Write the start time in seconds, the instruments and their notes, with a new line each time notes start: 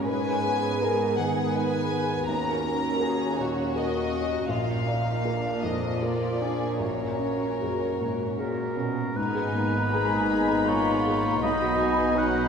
Already playing: felt piano F#3 G#3 C#4 A#4, viola section C#4
0.07 cello section G#2, felt piano G#2, viola section G#4, violin section B4 G#5
0.46 felt piano B3
0.82 viola section B3, felt piano D#4 A#4, violin section A#4
1.18 felt piano D#3, violin section G#4 F#5
1.55 felt piano D#4 B4, violin section B4 G#5
1.92 felt piano B3
2.28 felt piano D#2, cello section D#2, viola section C#4 F#4, violin section A#4 A#5
2.64 felt piano C#4
3.00 felt piano F#4 A#4, violin section G#4
3.38 felt piano A#2, violin section F#4 C#5
3.76 felt piano F#4 A#4, violin section D#5
4.13 felt piano C#4
4.49 felt piano A#1, cello section A#2, viola section A#3 F4, violin section F4 F5
4.87 violin section D#4, felt piano D5
5.25 violin section D4, felt piano F4 A#4
5.63 felt piano F2, violin section D#5
6.02 felt piano F4 A#4, violin section F4 D5
6.41 felt piano D4, violin section G#4
6.80 felt piano A#1, viola section C#4 F#4, violin section A#4 C#5
7.20 felt piano C#4
7.61 cello section F#2, felt piano F#4 G#4
8.00 cello section G#2, felt piano A#2
8.38 cello section A#2, felt piano F#4 G#4, oboe A#4
8.77 cello section B2, felt piano C#4
9.15 double bass section G#1, felt piano G#2, cello section G#2, french horn section B3 D#4, viola section B3, clarinet D#4, violin section D#4 G#5, oboe B4, flute section A#5
9.34 felt piano G#4
9.54 felt piano A#3, viola section B3
9.74 felt piano D#4
9.92 viola section G#3, violin section G#4 B5, felt piano G#4
10.13 felt piano A#3
10.31 viola section B3, felt piano D#4
10.50 felt piano G#4
10.68 felt piano A#3, violin section F4, oboe C#5
10.87 felt piano D#4
11.06 felt piano G#4
11.24 felt piano A#3
11.40 double bass section B1, felt piano B1, french horn section B2 F#4, cello section B2, viola section B3, clarinet D#4, violin section D#4 B5, oboe D#5, flute section B5
11.62 felt piano F#4
11.79 felt piano B3, violin section G#5
11.98 felt piano D#4
12.15 viola section C#4, violin section D#4 F#5, clarinet D#4, felt piano F#4, oboe F#5, flute section B5
12.35 felt piano B3